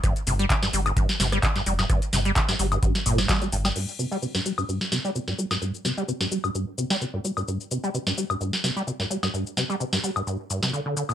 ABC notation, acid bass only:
X:1
M:4/4
L:1/16
Q:"Swing 16ths" 1/4=129
K:Gm
V:1 name="Acid bass" clef=bass
G,, z C, G, C, G,, G, G,, G,, z C, G, C, G,, G, G,, | G,, z C, G, C, G,, G, G,, G,, z B,, G,, G, G, G,, G, | G,, z C, G, C, G,, G, G,, G,, z C, G, C, G,, G, G,, | G,, z C, G, C, G,, G, G,, G,, z C, G, C, G,, G, G,, |
G,, z C, G, C, G,, G, G,, G,, z C, G, C, G,, G, G,, | G,, z C, G, C, G,, G, G,, G,, z G,, C, D, D, D, B,, |]